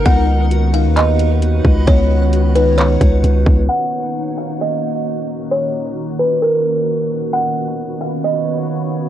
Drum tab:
HH |x-xxxxx-|x-xxxxx-|--------|--------|
CP |----x---|----x---|--------|--------|
BD |o------o|o----o-o|--------|--------|

HH |--------|
CP |--------|
BD |--------|